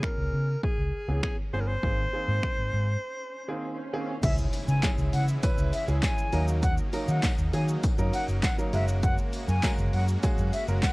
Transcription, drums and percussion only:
0.03 finger snap loud
0.03 kick loud
0.63 kick loud
1.23 finger snap loud
1.23 kick loud
1.83 kick loud
2.43 finger snap loud
2.43 kick loud
4.23 kick loud
4.23 closed hi-hat medium
4.23 crash loud
4.23 shaker medium
4.38 shaker medium
4.53 open hi-hat medium
4.53 tambourine medium
4.53 shaker medium
4.68 shaker medium
4.83 kick loud
4.83 snare loud
4.83 clap loud
4.83 closed hi-hat medium
4.83 tambourine medium
4.83 shaker medium
4.98 shaker medium
5.13 open hi-hat medium
5.13 tambourine medium
5.13 shaker medium
5.28 shaker medium
5.43 kick loud
5.43 closed hi-hat medium
5.43 tambourine medium
5.43 shaker medium
5.58 shaker medium
5.73 open hi-hat medium
5.73 tambourine medium
5.73 shaker medium
5.88 shaker medium
6.03 kick loud
6.03 snare medium
6.03 clap loud
6.03 closed hi-hat medium
6.03 tambourine medium
6.03 shaker medium
6.18 shaker medium
6.33 open hi-hat medium
6.33 shaker medium
6.48 shaker medium
6.63 kick loud
6.63 closed hi-hat medium
6.63 tambourine soft
6.63 shaker medium
6.78 shaker medium
6.93 open hi-hat medium
6.93 tambourine medium
6.93 shaker medium
7.08 shaker medium
7.23 kick loud
7.23 snare loud
7.23 clap loud
7.23 closed hi-hat medium
7.23 tambourine medium
7.23 shaker medium
7.38 shaker medium
7.53 open hi-hat medium
7.53 tambourine soft
7.53 shaker medium
7.68 shaker medium
7.83 kick loud
7.83 closed hi-hat medium
7.83 tambourine medium
7.83 shaker medium
7.98 shaker medium
8.13 open hi-hat medium
8.13 tambourine medium
8.13 shaker medium
8.28 shaker medium
8.43 kick loud
8.43 snare medium
8.43 clap loud
8.43 closed hi-hat medium
8.43 tambourine medium
8.43 shaker medium
8.58 shaker medium
8.73 open hi-hat medium
8.73 shaker medium
8.88 shaker medium
9.03 kick loud
9.03 closed hi-hat medium
9.03 shaker medium
9.18 shaker medium
9.33 open hi-hat medium
9.33 tambourine medium
9.33 shaker medium
9.48 shaker medium
9.63 kick loud
9.63 snare loud
9.63 clap loud
9.63 closed hi-hat medium
9.63 tambourine medium
9.63 shaker medium
9.78 shaker medium
9.93 open hi-hat medium
9.93 tambourine medium
9.93 shaker medium
10.08 shaker medium
10.23 kick loud
10.23 closed hi-hat medium
10.23 tambourine medium
10.23 shaker medium
10.38 shaker medium
10.53 open hi-hat medium
10.53 tambourine medium
10.53 shaker medium
10.68 shaker medium
10.83 kick loud
10.83 snare medium
10.83 clap loud
10.83 closed hi-hat medium
10.83 tambourine medium
10.83 shaker medium

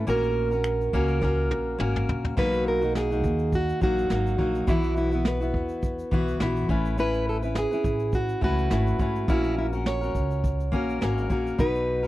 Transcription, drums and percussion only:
0.07 shaker medium
0.23 shaker soft
0.52 shaker soft
0.64 finger snap loud
0.64 shaker medium
0.81 shaker soft
0.93 kick medium
1.08 shaker soft
1.22 kick medium
1.22 snare medium
1.51 high tom medium
1.80 mid tom medium
1.96 mid tom medium
2.09 floor tom medium
2.25 floor tom medium
2.37 kick loud
2.37 crash medium
2.53 shaker soft
2.82 shaker soft
2.95 snare loud
2.95 shaker medium
3.12 shaker soft
3.24 kick medium
3.24 shaker medium
3.39 shaker soft
3.52 kick medium
3.52 shaker medium
3.69 shaker medium
3.82 kick medium
3.82 shaker soft
3.98 shaker soft
4.10 snare medium
4.10 shaker medium
4.26 shaker medium
4.39 kick medium
4.55 shaker medium
4.67 kick loud
4.67 shaker medium
4.83 shaker soft
4.96 shaker soft
5.12 shaker soft
5.25 snare loud
5.25 shaker medium
5.42 shaker soft
5.54 kick medium
5.69 shaker soft
5.83 kick medium
5.83 shaker medium
5.99 shaker medium
6.12 kick medium
6.28 shaker soft
6.40 snare loud
6.40 shaker medium
6.56 shaker medium
6.69 kick loud
6.85 shaker medium
6.98 shaker medium
7.13 shaker medium
7.42 shaker soft
7.55 snare loud
7.55 shaker medium
7.72 shaker soft
7.84 kick medium
7.84 shaker medium
7.99 shaker soft
8.12 kick medium
8.12 shaker medium
8.29 shaker medium
8.42 kick medium
8.58 shaker soft
8.71 snare medium
8.71 shaker medium
8.87 shaker medium
8.99 kick loud
8.99 shaker soft
9.16 shaker soft
9.28 kick loud
9.28 shaker medium
9.44 shaker medium
9.73 shaker soft
9.86 snare loud
9.86 shaker medium
10.03 shaker soft
10.15 kick medium
10.15 shaker medium
10.31 shaker soft
10.44 kick medium
10.44 shaker medium
10.60 shaker medium
10.73 kick medium
10.89 shaker soft
11.02 snare loud
11.02 shaker medium
11.18 shaker soft
11.30 kick medium
11.30 shaker medium
11.47 shaker soft
11.59 kick loud
11.59 shaker medium
11.75 shaker soft
12.04 shaker soft

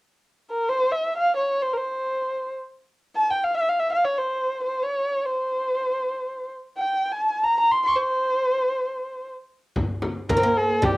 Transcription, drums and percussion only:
9.76 frame drum medium
9.76 darbuka dum medium
10.02 darbuka tek medium
10.02 frame drum medium
10.29 frame drum medium
10.29 darbuka dum medium
10.57 darbuka ka soft
10.82 darbuka dum medium
10.82 frame drum medium

